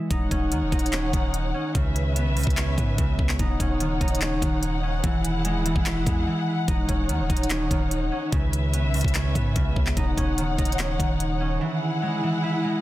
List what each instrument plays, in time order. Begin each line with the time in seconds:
Already playing: harp E3 G#3 C#4 E4
0.10 808-style bass D#1, harp D#4, string section D#4 C#5 F#5, kick, closed hi-hat
0.31 808-style bass D#1, harp C#4, kick, closed hi-hat
0.52 808-style bass D#2, harp D#3, closed hi-hat
0.62 808-style bass D#1
0.72 808-style bass D#1, harp D#4, kick, closed hi-hat
0.79 closed hi-hat
0.86 closed hi-hat
0.93 harp C#4, clap, closed hi-hat
1.13 808-style bass D#1, harp D#3, kick, closed hi-hat
1.34 closed hi-hat
1.54 harp C#4
1.75 808-style bass C#2, harp C#3, string section C#4 B4 E5, kick, closed hi-hat
1.96 closed hi-hat
2.16 harp B3, closed hi-hat
2.26 808-style bass B1
2.37 808-style bass C#2, harp C#3, closed hi-hat, open hi-hat
2.43 808-style bass C#2, kick, closed hi-hat
2.50 closed hi-hat
2.57 harp C#4, clap, closed hi-hat
2.78 808-style bass G#2, harp B3, kick, closed hi-hat
2.98 808-style bass C#2, harp C#3, kick, closed hi-hat
3.19 808-style bass C#2, kick
3.29 clap
3.39 808-style bass D#1, string section D#4 C#5 F#5, harp D#4, kick, closed hi-hat
3.60 808-style bass D#1, harp C#4, kick, closed hi-hat
3.80 harp D#3, closed hi-hat
4.01 808-style bass D#1, harp D#4, kick, closed hi-hat
4.08 closed hi-hat
4.15 closed hi-hat
4.21 harp C#4, clap, closed hi-hat
4.42 808-style bass D#1, harp D#3, kick, closed hi-hat
4.63 closed hi-hat
4.83 harp C#4
5.03 808-style bass E1, harp E3, string section E4 G#4, kick, closed hi-hat
5.25 closed hi-hat
5.45 harp G#3, closed hi-hat
5.55 808-style bass D#1
5.65 harp E3, closed hi-hat
5.76 808-style bass E1, kick
5.86 harp E4, clap, closed hi-hat
6.06 808-style bass E2, harp G#3, kick, closed hi-hat
6.27 harp E3
6.68 808-style bass D#1, harp D#4, string section D#4 C#5, kick, closed hi-hat
6.89 808-style bass D#1, harp C#4, kick, closed hi-hat
7.09 808-style bass D#2, harp D#3, closed hi-hat
7.20 808-style bass D#1
7.30 808-style bass D#1, harp D#4, kick, closed hi-hat
7.37 closed hi-hat
7.43 closed hi-hat
7.50 harp C#4, clap, closed hi-hat
7.71 808-style bass D#1, harp D#3, kick, closed hi-hat
7.91 closed hi-hat
8.12 harp C#4
8.32 808-style bass C#2, harp C#3, string section C#4 B4 E5, kick, closed hi-hat
8.53 closed hi-hat
8.74 harp B3, closed hi-hat
8.84 808-style bass B1
8.94 808-style bass C#2, harp C#3, closed hi-hat, open hi-hat
9.01 808-style bass C#2, kick, closed hi-hat
9.08 closed hi-hat
9.14 harp C#4, clap, closed hi-hat
9.35 808-style bass G#2, harp B3, kick, closed hi-hat
9.56 808-style bass C#2, harp C#3, kick, closed hi-hat
9.76 808-style bass C#2, kick
9.87 clap
9.97 808-style bass D#1, harp D#4, string section D#4 C#5 F#5, kick, closed hi-hat
10.17 808-style bass D#1, harp C#4, kick, closed hi-hat
10.38 harp D#3, closed hi-hat
10.58 808-style bass D#1, harp D#4, kick, closed hi-hat
10.65 closed hi-hat
10.72 closed hi-hat
10.79 harp C#4, clap, closed hi-hat
11.00 808-style bass D#1, harp D#3, kick, closed hi-hat
11.20 closed hi-hat
11.41 harp C#4
11.61 harp E3, string section E4 G#4 F#5
12.02 harp G#3
12.23 harp E3
12.44 harp E4
12.64 harp G#3